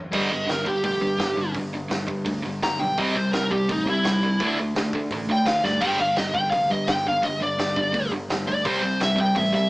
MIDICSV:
0, 0, Header, 1, 6, 480
1, 0, Start_track
1, 0, Tempo, 354400
1, 191, Time_signature, 4, 2, 24, 8
1, 13131, End_track
2, 0, Start_track
2, 0, Title_t, "Lead electric guitar"
2, 0, Program_c, 0, 29
2, 182, Note_on_c, 0, 75, 110
2, 653, Note_off_c, 0, 75, 0
2, 679, Note_on_c, 0, 70, 81
2, 906, Note_on_c, 0, 67, 78
2, 909, Note_off_c, 0, 70, 0
2, 1128, Note_off_c, 0, 67, 0
2, 1144, Note_on_c, 0, 67, 97
2, 2081, Note_off_c, 0, 67, 0
2, 3564, Note_on_c, 0, 82, 94
2, 3782, Note_off_c, 0, 82, 0
2, 3782, Note_on_c, 0, 79, 92
2, 4023, Note_off_c, 0, 79, 0
2, 4040, Note_on_c, 0, 75, 103
2, 4271, Note_on_c, 0, 72, 88
2, 4272, Note_off_c, 0, 75, 0
2, 4500, Note_off_c, 0, 72, 0
2, 4505, Note_on_c, 0, 70, 96
2, 4745, Note_off_c, 0, 70, 0
2, 4747, Note_on_c, 0, 67, 89
2, 4986, Note_off_c, 0, 67, 0
2, 5026, Note_on_c, 0, 63, 96
2, 5246, Note_off_c, 0, 63, 0
2, 5275, Note_on_c, 0, 64, 91
2, 6190, Note_off_c, 0, 64, 0
2, 7202, Note_on_c, 0, 79, 97
2, 7399, Note_off_c, 0, 79, 0
2, 7399, Note_on_c, 0, 77, 82
2, 7632, Note_off_c, 0, 77, 0
2, 7638, Note_on_c, 0, 74, 93
2, 7866, Note_on_c, 0, 79, 109
2, 7872, Note_off_c, 0, 74, 0
2, 8105, Note_off_c, 0, 79, 0
2, 8127, Note_on_c, 0, 77, 108
2, 8340, Note_on_c, 0, 75, 79
2, 8357, Note_off_c, 0, 77, 0
2, 8582, Note_off_c, 0, 75, 0
2, 8586, Note_on_c, 0, 79, 101
2, 8805, Note_off_c, 0, 79, 0
2, 8810, Note_on_c, 0, 77, 95
2, 9057, Note_off_c, 0, 77, 0
2, 9089, Note_on_c, 0, 75, 77
2, 9310, Note_on_c, 0, 79, 92
2, 9317, Note_off_c, 0, 75, 0
2, 9547, Note_off_c, 0, 79, 0
2, 9593, Note_on_c, 0, 77, 87
2, 9809, Note_off_c, 0, 77, 0
2, 9813, Note_on_c, 0, 75, 92
2, 10038, Note_off_c, 0, 75, 0
2, 10064, Note_on_c, 0, 74, 107
2, 10982, Note_off_c, 0, 74, 0
2, 11476, Note_on_c, 0, 74, 110
2, 11709, Note_off_c, 0, 74, 0
2, 11736, Note_on_c, 0, 72, 104
2, 12191, Note_off_c, 0, 72, 0
2, 12219, Note_on_c, 0, 76, 93
2, 12440, Note_off_c, 0, 76, 0
2, 12473, Note_on_c, 0, 79, 97
2, 12690, Note_off_c, 0, 79, 0
2, 12690, Note_on_c, 0, 76, 92
2, 12915, Note_off_c, 0, 76, 0
2, 12932, Note_on_c, 0, 76, 99
2, 13131, Note_off_c, 0, 76, 0
2, 13131, End_track
3, 0, Start_track
3, 0, Title_t, "Distorted electric guitar"
3, 0, Program_c, 1, 30
3, 155, Note_on_c, 1, 43, 96
3, 172, Note_on_c, 1, 50, 93
3, 177, Note_on_c, 1, 55, 103
3, 393, Note_off_c, 1, 43, 0
3, 393, Note_off_c, 1, 50, 0
3, 409, Note_on_c, 1, 43, 67
3, 409, Note_on_c, 1, 50, 88
3, 410, Note_off_c, 1, 55, 0
3, 637, Note_off_c, 1, 43, 0
3, 637, Note_off_c, 1, 50, 0
3, 658, Note_on_c, 1, 43, 76
3, 663, Note_on_c, 1, 50, 89
3, 880, Note_off_c, 1, 50, 0
3, 882, Note_off_c, 1, 43, 0
3, 896, Note_on_c, 1, 50, 83
3, 897, Note_on_c, 1, 43, 69
3, 1121, Note_off_c, 1, 43, 0
3, 1121, Note_off_c, 1, 50, 0
3, 1140, Note_on_c, 1, 43, 71
3, 1143, Note_on_c, 1, 50, 88
3, 1357, Note_off_c, 1, 43, 0
3, 1365, Note_off_c, 1, 50, 0
3, 1373, Note_on_c, 1, 43, 78
3, 1386, Note_on_c, 1, 50, 81
3, 1600, Note_off_c, 1, 43, 0
3, 1606, Note_off_c, 1, 50, 0
3, 1622, Note_on_c, 1, 43, 77
3, 1635, Note_on_c, 1, 50, 84
3, 1844, Note_off_c, 1, 43, 0
3, 1851, Note_off_c, 1, 50, 0
3, 1862, Note_on_c, 1, 43, 69
3, 1870, Note_on_c, 1, 50, 83
3, 2085, Note_off_c, 1, 43, 0
3, 2088, Note_off_c, 1, 50, 0
3, 2121, Note_on_c, 1, 43, 78
3, 2129, Note_on_c, 1, 50, 90
3, 2334, Note_off_c, 1, 43, 0
3, 2338, Note_off_c, 1, 50, 0
3, 2360, Note_on_c, 1, 43, 76
3, 2369, Note_on_c, 1, 50, 78
3, 2574, Note_off_c, 1, 43, 0
3, 2578, Note_off_c, 1, 50, 0
3, 2590, Note_on_c, 1, 43, 73
3, 2601, Note_on_c, 1, 50, 79
3, 2798, Note_off_c, 1, 43, 0
3, 2799, Note_off_c, 1, 50, 0
3, 2814, Note_on_c, 1, 43, 66
3, 2816, Note_on_c, 1, 50, 76
3, 3041, Note_off_c, 1, 43, 0
3, 3042, Note_off_c, 1, 50, 0
3, 3062, Note_on_c, 1, 43, 80
3, 3070, Note_on_c, 1, 50, 81
3, 3286, Note_off_c, 1, 43, 0
3, 3290, Note_off_c, 1, 50, 0
3, 3321, Note_on_c, 1, 43, 85
3, 3321, Note_on_c, 1, 50, 89
3, 3535, Note_off_c, 1, 43, 0
3, 3536, Note_off_c, 1, 50, 0
3, 3560, Note_on_c, 1, 50, 77
3, 3561, Note_on_c, 1, 43, 81
3, 3771, Note_off_c, 1, 43, 0
3, 3775, Note_off_c, 1, 50, 0
3, 3787, Note_on_c, 1, 43, 73
3, 3793, Note_on_c, 1, 50, 85
3, 4009, Note_off_c, 1, 43, 0
3, 4012, Note_off_c, 1, 50, 0
3, 4042, Note_on_c, 1, 48, 98
3, 4043, Note_on_c, 1, 55, 97
3, 4060, Note_on_c, 1, 60, 118
3, 4263, Note_off_c, 1, 48, 0
3, 4267, Note_off_c, 1, 55, 0
3, 4275, Note_off_c, 1, 60, 0
3, 4279, Note_on_c, 1, 48, 80
3, 4291, Note_on_c, 1, 55, 92
3, 4495, Note_off_c, 1, 48, 0
3, 4501, Note_off_c, 1, 55, 0
3, 4527, Note_on_c, 1, 48, 81
3, 4535, Note_on_c, 1, 55, 93
3, 4739, Note_off_c, 1, 48, 0
3, 4743, Note_off_c, 1, 55, 0
3, 4766, Note_on_c, 1, 48, 71
3, 4771, Note_on_c, 1, 55, 75
3, 4979, Note_off_c, 1, 48, 0
3, 4981, Note_off_c, 1, 55, 0
3, 5003, Note_on_c, 1, 48, 77
3, 5012, Note_on_c, 1, 55, 88
3, 5217, Note_off_c, 1, 48, 0
3, 5222, Note_off_c, 1, 55, 0
3, 5246, Note_on_c, 1, 48, 79
3, 5260, Note_on_c, 1, 55, 92
3, 5459, Note_off_c, 1, 48, 0
3, 5466, Note_off_c, 1, 55, 0
3, 5483, Note_on_c, 1, 48, 70
3, 5487, Note_on_c, 1, 55, 87
3, 5697, Note_off_c, 1, 48, 0
3, 5700, Note_off_c, 1, 55, 0
3, 5744, Note_on_c, 1, 48, 68
3, 5750, Note_on_c, 1, 55, 80
3, 5948, Note_off_c, 1, 48, 0
3, 5951, Note_off_c, 1, 55, 0
3, 5984, Note_on_c, 1, 50, 95
3, 5996, Note_on_c, 1, 57, 95
3, 6000, Note_on_c, 1, 62, 103
3, 6198, Note_off_c, 1, 50, 0
3, 6204, Note_off_c, 1, 57, 0
3, 6206, Note_off_c, 1, 62, 0
3, 6230, Note_on_c, 1, 57, 78
3, 6231, Note_on_c, 1, 50, 84
3, 6431, Note_off_c, 1, 57, 0
3, 6432, Note_off_c, 1, 50, 0
3, 6454, Note_on_c, 1, 50, 77
3, 6467, Note_on_c, 1, 57, 83
3, 6663, Note_off_c, 1, 50, 0
3, 6670, Note_off_c, 1, 57, 0
3, 6690, Note_on_c, 1, 50, 70
3, 6702, Note_on_c, 1, 57, 77
3, 6901, Note_off_c, 1, 50, 0
3, 6907, Note_off_c, 1, 57, 0
3, 6935, Note_on_c, 1, 57, 85
3, 6939, Note_on_c, 1, 50, 74
3, 7144, Note_off_c, 1, 57, 0
3, 7146, Note_off_c, 1, 50, 0
3, 7166, Note_on_c, 1, 50, 77
3, 7172, Note_on_c, 1, 57, 87
3, 7379, Note_off_c, 1, 50, 0
3, 7382, Note_off_c, 1, 57, 0
3, 7413, Note_on_c, 1, 50, 61
3, 7414, Note_on_c, 1, 57, 74
3, 7623, Note_off_c, 1, 50, 0
3, 7623, Note_off_c, 1, 57, 0
3, 7649, Note_on_c, 1, 50, 68
3, 7663, Note_on_c, 1, 57, 80
3, 7861, Note_off_c, 1, 50, 0
3, 7867, Note_off_c, 1, 57, 0
3, 7887, Note_on_c, 1, 43, 89
3, 7898, Note_on_c, 1, 50, 99
3, 7910, Note_on_c, 1, 55, 103
3, 8109, Note_off_c, 1, 43, 0
3, 8115, Note_off_c, 1, 50, 0
3, 8121, Note_off_c, 1, 55, 0
3, 8135, Note_on_c, 1, 43, 72
3, 8142, Note_on_c, 1, 50, 82
3, 8344, Note_off_c, 1, 43, 0
3, 8347, Note_off_c, 1, 50, 0
3, 8376, Note_on_c, 1, 43, 69
3, 8388, Note_on_c, 1, 50, 88
3, 8584, Note_off_c, 1, 43, 0
3, 8590, Note_off_c, 1, 50, 0
3, 8618, Note_on_c, 1, 43, 79
3, 8620, Note_on_c, 1, 50, 80
3, 8825, Note_off_c, 1, 43, 0
3, 8826, Note_off_c, 1, 50, 0
3, 8854, Note_on_c, 1, 43, 75
3, 8865, Note_on_c, 1, 50, 79
3, 9063, Note_off_c, 1, 43, 0
3, 9068, Note_off_c, 1, 50, 0
3, 9102, Note_on_c, 1, 43, 78
3, 9104, Note_on_c, 1, 50, 85
3, 9307, Note_off_c, 1, 43, 0
3, 9308, Note_off_c, 1, 50, 0
3, 9331, Note_on_c, 1, 43, 74
3, 9345, Note_on_c, 1, 50, 81
3, 9541, Note_off_c, 1, 43, 0
3, 9548, Note_off_c, 1, 50, 0
3, 9569, Note_on_c, 1, 43, 79
3, 9573, Note_on_c, 1, 50, 82
3, 9780, Note_off_c, 1, 43, 0
3, 9782, Note_off_c, 1, 50, 0
3, 9800, Note_on_c, 1, 43, 79
3, 9810, Note_on_c, 1, 50, 91
3, 10015, Note_off_c, 1, 43, 0
3, 10020, Note_off_c, 1, 50, 0
3, 10050, Note_on_c, 1, 43, 74
3, 10056, Note_on_c, 1, 50, 90
3, 10260, Note_off_c, 1, 43, 0
3, 10263, Note_off_c, 1, 50, 0
3, 10285, Note_on_c, 1, 43, 78
3, 10287, Note_on_c, 1, 50, 81
3, 10497, Note_off_c, 1, 43, 0
3, 10498, Note_off_c, 1, 50, 0
3, 10532, Note_on_c, 1, 43, 64
3, 10545, Note_on_c, 1, 50, 85
3, 10740, Note_off_c, 1, 43, 0
3, 10747, Note_off_c, 1, 50, 0
3, 10777, Note_on_c, 1, 43, 70
3, 10785, Note_on_c, 1, 50, 88
3, 10983, Note_off_c, 1, 43, 0
3, 10987, Note_off_c, 1, 50, 0
3, 10999, Note_on_c, 1, 43, 78
3, 11004, Note_on_c, 1, 50, 94
3, 11214, Note_off_c, 1, 43, 0
3, 11216, Note_off_c, 1, 50, 0
3, 11236, Note_on_c, 1, 43, 78
3, 11251, Note_on_c, 1, 50, 86
3, 11452, Note_off_c, 1, 43, 0
3, 11460, Note_off_c, 1, 50, 0
3, 11466, Note_on_c, 1, 43, 70
3, 11474, Note_on_c, 1, 50, 85
3, 11687, Note_off_c, 1, 43, 0
3, 11691, Note_off_c, 1, 50, 0
3, 11721, Note_on_c, 1, 48, 101
3, 11728, Note_on_c, 1, 55, 109
3, 11736, Note_on_c, 1, 60, 111
3, 11944, Note_off_c, 1, 48, 0
3, 11947, Note_off_c, 1, 55, 0
3, 11952, Note_off_c, 1, 60, 0
3, 11964, Note_on_c, 1, 48, 76
3, 11966, Note_on_c, 1, 55, 86
3, 12176, Note_off_c, 1, 48, 0
3, 12177, Note_off_c, 1, 55, 0
3, 12197, Note_on_c, 1, 48, 75
3, 12202, Note_on_c, 1, 55, 80
3, 12412, Note_off_c, 1, 48, 0
3, 12414, Note_off_c, 1, 55, 0
3, 12440, Note_on_c, 1, 48, 64
3, 12452, Note_on_c, 1, 55, 83
3, 12653, Note_off_c, 1, 48, 0
3, 12659, Note_off_c, 1, 55, 0
3, 12686, Note_on_c, 1, 48, 79
3, 12693, Note_on_c, 1, 55, 86
3, 12896, Note_off_c, 1, 48, 0
3, 12899, Note_off_c, 1, 55, 0
3, 12940, Note_on_c, 1, 48, 84
3, 12941, Note_on_c, 1, 55, 85
3, 13131, Note_off_c, 1, 48, 0
3, 13131, Note_off_c, 1, 55, 0
3, 13131, End_track
4, 0, Start_track
4, 0, Title_t, "Overdriven electric guitar"
4, 0, Program_c, 2, 29
4, 10729, Note_on_c, 2, 50, 89
4, 10959, Note_off_c, 2, 50, 0
4, 13131, End_track
5, 0, Start_track
5, 0, Title_t, "Picked electric bass"
5, 0, Program_c, 3, 34
5, 0, Note_on_c, 3, 30, 80
5, 161, Note_off_c, 3, 30, 0
5, 182, Note_on_c, 3, 31, 95
5, 408, Note_off_c, 3, 31, 0
5, 420, Note_on_c, 3, 31, 90
5, 647, Note_off_c, 3, 31, 0
5, 660, Note_on_c, 3, 31, 88
5, 887, Note_off_c, 3, 31, 0
5, 898, Note_on_c, 3, 31, 94
5, 1127, Note_off_c, 3, 31, 0
5, 1139, Note_on_c, 3, 29, 89
5, 1358, Note_off_c, 3, 29, 0
5, 1366, Note_on_c, 3, 43, 88
5, 1594, Note_off_c, 3, 43, 0
5, 1602, Note_on_c, 3, 31, 86
5, 2060, Note_off_c, 3, 31, 0
5, 2093, Note_on_c, 3, 31, 87
5, 2547, Note_off_c, 3, 31, 0
5, 2570, Note_on_c, 3, 31, 94
5, 2804, Note_off_c, 3, 31, 0
5, 2820, Note_on_c, 3, 43, 93
5, 3049, Note_off_c, 3, 43, 0
5, 3059, Note_on_c, 3, 38, 94
5, 3289, Note_off_c, 3, 38, 0
5, 3319, Note_on_c, 3, 31, 101
5, 3528, Note_off_c, 3, 31, 0
5, 3536, Note_on_c, 3, 31, 85
5, 3768, Note_off_c, 3, 31, 0
5, 3781, Note_on_c, 3, 35, 92
5, 4011, Note_off_c, 3, 35, 0
5, 4033, Note_on_c, 3, 36, 101
5, 4257, Note_off_c, 3, 36, 0
5, 4276, Note_on_c, 3, 36, 97
5, 4499, Note_off_c, 3, 36, 0
5, 4524, Note_on_c, 3, 36, 100
5, 4743, Note_off_c, 3, 36, 0
5, 4758, Note_on_c, 3, 36, 84
5, 4980, Note_off_c, 3, 36, 0
5, 5005, Note_on_c, 3, 33, 88
5, 5213, Note_off_c, 3, 33, 0
5, 5221, Note_on_c, 3, 48, 92
5, 5451, Note_off_c, 3, 48, 0
5, 5465, Note_on_c, 3, 36, 98
5, 5915, Note_off_c, 3, 36, 0
5, 5958, Note_on_c, 3, 38, 101
5, 6402, Note_off_c, 3, 38, 0
5, 6434, Note_on_c, 3, 38, 94
5, 6658, Note_off_c, 3, 38, 0
5, 6682, Note_on_c, 3, 50, 93
5, 6903, Note_off_c, 3, 50, 0
5, 6920, Note_on_c, 3, 33, 96
5, 7133, Note_off_c, 3, 33, 0
5, 7141, Note_on_c, 3, 38, 95
5, 7371, Note_off_c, 3, 38, 0
5, 7385, Note_on_c, 3, 38, 93
5, 7614, Note_off_c, 3, 38, 0
5, 7634, Note_on_c, 3, 43, 90
5, 7858, Note_off_c, 3, 43, 0
5, 7875, Note_on_c, 3, 31, 96
5, 8099, Note_off_c, 3, 31, 0
5, 8112, Note_on_c, 3, 31, 100
5, 8337, Note_off_c, 3, 31, 0
5, 8361, Note_on_c, 3, 31, 91
5, 8582, Note_off_c, 3, 31, 0
5, 8592, Note_on_c, 3, 31, 94
5, 8817, Note_off_c, 3, 31, 0
5, 8833, Note_on_c, 3, 29, 94
5, 9057, Note_off_c, 3, 29, 0
5, 9074, Note_on_c, 3, 43, 98
5, 9298, Note_off_c, 3, 43, 0
5, 9307, Note_on_c, 3, 31, 88
5, 9755, Note_off_c, 3, 31, 0
5, 9788, Note_on_c, 3, 31, 98
5, 10235, Note_off_c, 3, 31, 0
5, 10267, Note_on_c, 3, 31, 95
5, 10493, Note_off_c, 3, 31, 0
5, 10512, Note_on_c, 3, 43, 97
5, 10736, Note_off_c, 3, 43, 0
5, 10754, Note_on_c, 3, 38, 94
5, 10973, Note_off_c, 3, 38, 0
5, 10981, Note_on_c, 3, 31, 99
5, 11209, Note_off_c, 3, 31, 0
5, 11237, Note_on_c, 3, 31, 89
5, 11450, Note_off_c, 3, 31, 0
5, 11459, Note_on_c, 3, 38, 90
5, 11688, Note_off_c, 3, 38, 0
5, 11722, Note_on_c, 3, 36, 99
5, 11941, Note_off_c, 3, 36, 0
5, 11955, Note_on_c, 3, 36, 105
5, 12176, Note_off_c, 3, 36, 0
5, 12201, Note_on_c, 3, 36, 100
5, 12420, Note_off_c, 3, 36, 0
5, 12443, Note_on_c, 3, 36, 99
5, 12660, Note_off_c, 3, 36, 0
5, 12680, Note_on_c, 3, 33, 102
5, 12899, Note_off_c, 3, 33, 0
5, 12910, Note_on_c, 3, 48, 92
5, 13131, Note_off_c, 3, 48, 0
5, 13131, End_track
6, 0, Start_track
6, 0, Title_t, "Drums"
6, 174, Note_on_c, 9, 49, 113
6, 180, Note_on_c, 9, 36, 104
6, 309, Note_off_c, 9, 49, 0
6, 315, Note_off_c, 9, 36, 0
6, 658, Note_on_c, 9, 46, 53
6, 668, Note_on_c, 9, 38, 107
6, 793, Note_off_c, 9, 46, 0
6, 804, Note_off_c, 9, 38, 0
6, 898, Note_on_c, 9, 36, 81
6, 1034, Note_off_c, 9, 36, 0
6, 1130, Note_on_c, 9, 46, 61
6, 1136, Note_on_c, 9, 36, 114
6, 1266, Note_off_c, 9, 46, 0
6, 1272, Note_off_c, 9, 36, 0
6, 1613, Note_on_c, 9, 46, 58
6, 1624, Note_on_c, 9, 38, 121
6, 1748, Note_off_c, 9, 46, 0
6, 1759, Note_off_c, 9, 38, 0
6, 2089, Note_on_c, 9, 46, 55
6, 2094, Note_on_c, 9, 36, 100
6, 2225, Note_off_c, 9, 46, 0
6, 2229, Note_off_c, 9, 36, 0
6, 2578, Note_on_c, 9, 46, 63
6, 2589, Note_on_c, 9, 38, 113
6, 2714, Note_off_c, 9, 46, 0
6, 2725, Note_off_c, 9, 38, 0
6, 2819, Note_on_c, 9, 36, 89
6, 2955, Note_off_c, 9, 36, 0
6, 3053, Note_on_c, 9, 46, 73
6, 3060, Note_on_c, 9, 36, 115
6, 3188, Note_off_c, 9, 46, 0
6, 3195, Note_off_c, 9, 36, 0
6, 3553, Note_on_c, 9, 46, 64
6, 3564, Note_on_c, 9, 38, 119
6, 3688, Note_off_c, 9, 46, 0
6, 3699, Note_off_c, 9, 38, 0
6, 4030, Note_on_c, 9, 46, 59
6, 4033, Note_on_c, 9, 36, 112
6, 4166, Note_off_c, 9, 46, 0
6, 4168, Note_off_c, 9, 36, 0
6, 4510, Note_on_c, 9, 46, 63
6, 4521, Note_on_c, 9, 38, 113
6, 4646, Note_off_c, 9, 46, 0
6, 4657, Note_off_c, 9, 38, 0
6, 4760, Note_on_c, 9, 36, 88
6, 4895, Note_off_c, 9, 36, 0
6, 5001, Note_on_c, 9, 36, 127
6, 5005, Note_on_c, 9, 46, 66
6, 5137, Note_off_c, 9, 36, 0
6, 5141, Note_off_c, 9, 46, 0
6, 5478, Note_on_c, 9, 46, 60
6, 5489, Note_on_c, 9, 38, 116
6, 5614, Note_off_c, 9, 46, 0
6, 5625, Note_off_c, 9, 38, 0
6, 5962, Note_on_c, 9, 36, 122
6, 5965, Note_on_c, 9, 46, 61
6, 6097, Note_off_c, 9, 36, 0
6, 6100, Note_off_c, 9, 46, 0
6, 6441, Note_on_c, 9, 46, 60
6, 6452, Note_on_c, 9, 38, 119
6, 6576, Note_off_c, 9, 46, 0
6, 6587, Note_off_c, 9, 38, 0
6, 6680, Note_on_c, 9, 36, 99
6, 6815, Note_off_c, 9, 36, 0
6, 6919, Note_on_c, 9, 36, 116
6, 6921, Note_on_c, 9, 46, 70
6, 7054, Note_off_c, 9, 36, 0
6, 7057, Note_off_c, 9, 46, 0
6, 7389, Note_on_c, 9, 46, 69
6, 7400, Note_on_c, 9, 38, 122
6, 7525, Note_off_c, 9, 46, 0
6, 7536, Note_off_c, 9, 38, 0
6, 7646, Note_on_c, 9, 38, 65
6, 7781, Note_off_c, 9, 38, 0
6, 7875, Note_on_c, 9, 36, 105
6, 7876, Note_on_c, 9, 46, 60
6, 7876, Note_on_c, 9, 49, 100
6, 8011, Note_off_c, 9, 36, 0
6, 8011, Note_off_c, 9, 46, 0
6, 8011, Note_off_c, 9, 49, 0
6, 8345, Note_on_c, 9, 46, 63
6, 8356, Note_on_c, 9, 38, 110
6, 8480, Note_off_c, 9, 46, 0
6, 8491, Note_off_c, 9, 38, 0
6, 8593, Note_on_c, 9, 36, 88
6, 8729, Note_off_c, 9, 36, 0
6, 8831, Note_on_c, 9, 46, 66
6, 8832, Note_on_c, 9, 36, 112
6, 8966, Note_off_c, 9, 46, 0
6, 8967, Note_off_c, 9, 36, 0
6, 9310, Note_on_c, 9, 46, 68
6, 9321, Note_on_c, 9, 38, 118
6, 9445, Note_off_c, 9, 46, 0
6, 9456, Note_off_c, 9, 38, 0
6, 9796, Note_on_c, 9, 36, 100
6, 9800, Note_on_c, 9, 46, 63
6, 9932, Note_off_c, 9, 36, 0
6, 9935, Note_off_c, 9, 46, 0
6, 10277, Note_on_c, 9, 46, 60
6, 10288, Note_on_c, 9, 38, 107
6, 10413, Note_off_c, 9, 46, 0
6, 10423, Note_off_c, 9, 38, 0
6, 10515, Note_on_c, 9, 36, 91
6, 10651, Note_off_c, 9, 36, 0
6, 10754, Note_on_c, 9, 46, 63
6, 10756, Note_on_c, 9, 36, 125
6, 10889, Note_off_c, 9, 46, 0
6, 10891, Note_off_c, 9, 36, 0
6, 11236, Note_on_c, 9, 46, 72
6, 11247, Note_on_c, 9, 38, 127
6, 11371, Note_off_c, 9, 46, 0
6, 11382, Note_off_c, 9, 38, 0
6, 11717, Note_on_c, 9, 46, 65
6, 11719, Note_on_c, 9, 36, 125
6, 11853, Note_off_c, 9, 46, 0
6, 11854, Note_off_c, 9, 36, 0
6, 12195, Note_on_c, 9, 46, 65
6, 12206, Note_on_c, 9, 38, 110
6, 12331, Note_off_c, 9, 46, 0
6, 12342, Note_off_c, 9, 38, 0
6, 12440, Note_on_c, 9, 36, 97
6, 12575, Note_off_c, 9, 36, 0
6, 12677, Note_on_c, 9, 36, 119
6, 12679, Note_on_c, 9, 46, 74
6, 12812, Note_off_c, 9, 36, 0
6, 12815, Note_off_c, 9, 46, 0
6, 13131, End_track
0, 0, End_of_file